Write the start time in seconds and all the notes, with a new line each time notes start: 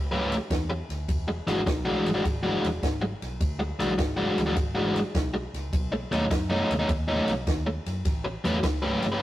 Already playing: C#2
0.12 A3 C#4 G4 B4
0.32 snare, ride
0.50 E2, kick, snare, ride
0.70 muted overdriven electric guitar stroke
0.89 D2, snare, ride
1.08 E1, kick, ride
1.28 muted overdriven electric guitar stroke
1.47 G#1 E3 G#3 D4 F#4, snare, ride
1.66 B1, muted overdriven electric guitar stroke, kick, snare, ride
1.85 E3 G#3 D4 F#4
2.06 G#1, snare, ride
2.14 E3 G#3 D4 F#4
2.24 G#1, muted overdriven electric guitar stroke, kick, ride
2.43 E3 G#3 D4 F#4
2.64 E1, snare, ride
2.83 G#1, kick, snare, ride
3.01 muted overdriven electric guitar stroke
3.22 B1, snare, ride
3.41 D2, kick, ride
3.59 muted overdriven electric guitar stroke
3.79 B1 E3 G#3 D4 F#4, snare, ride
3.98 G#1, muted overdriven electric guitar stroke, kick, snare, ride
4.17 E3 G#3 D4 F#4
4.38 D2, snare, ride
4.46 E3 G#3 D4 F#4
4.55 G#1, muted overdriven electric guitar stroke, kick, ride
4.75 E3 G#3 D4 F#4
4.96 snare, ride
5.15 B1, kick, snare, ride
5.34 muted overdriven electric guitar stroke
5.54 C#2, snare, ride
5.73 B1, kick, ride
5.92 muted overdriven electric guitar stroke
6.11 D#2 B2 A3 C#4 D#4, snare, ride
6.30 F#2, muted overdriven electric guitar stroke, kick, snare, ride
6.50 B2 A3 C#4 D#4
6.70 D#2, snare, ride
6.79 B2 A3 C#4 D#4
6.89 D#2, muted overdriven electric guitar stroke, kick, ride
7.08 B2 A3 C#4 D#4
7.28 B1, snare, ride
7.47 D#2, kick, snare, ride
7.66 muted overdriven electric guitar stroke
7.86 F#2, snare, ride
8.05 A1, kick, snare, ride
8.24 muted overdriven electric guitar stroke
8.44 E2 A3 C#4 G4 B4, snare, ride
8.63 C#2, muted overdriven electric guitar stroke, kick, snare, ride
8.82 A3 C#4 G4 B4
9.02 G1, snare, ride
9.12 A3 C#4 G4 B4